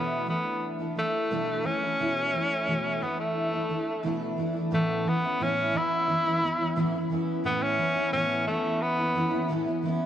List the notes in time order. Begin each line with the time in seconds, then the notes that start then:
Already playing: B2 E3 A3 B3 D4 E4
0.27 E3 A3 B3 D4 E4
0.79 A3 D4 E4
0.95 E3 A3 D4 E4
1.31 B2 E3 A3 D4 E4
1.64 E3 A3 C#4 D4 E4
1.81 A3 D4 E4
1.99 B2 E3 A3 E4
2.33 E3 A3 E4
2.67 B2 E3 A3 E4
3.01 E3 A3 B3 D4 E4
3.20 A3
3.52 A3 D4 E4
3.69 E3 A3 D4 E4
4.03 B2 E3 A3 D4 E4
4.37 E3 A3 D4 E4
4.54 A3 D4 E4
4.71 A2 E3 A3 B3 C#4 E4
5.05 E3 B3 C#4 E4
5.22 B3 C#4 E4
5.39 A2 E3 B3 C#4 E4
5.73 E3 B3 C#4 E4
6.07 E3 B3 C#4 E4
6.24 B3 C#4 E4
6.41 E3 B3 C#4 E4
6.58 B3 C#4 E4
6.76 A2 E3 B3 C#4 E4
6.92 B3 C#4 E4
7.10 E3 B3 C#4 E4
7.44 A2 E3 B3 C#4 E4
7.63 C#4
7.78 E3 B3 C#4 E4
7.95 B3 C#4 E4
8.12 A2 E3 B3 C#4 E4
8.46 E3 A3 B3 C#4 E4
8.82 B3
8.97 B3 C#4 E4
9.14 E3 B3 C#4 E4
9.31 B3 C#4 E4
9.48 A2 E3 B3 C#4 E4
9.65 B3 C#4 E4
9.83 E3 B3 C#4 E4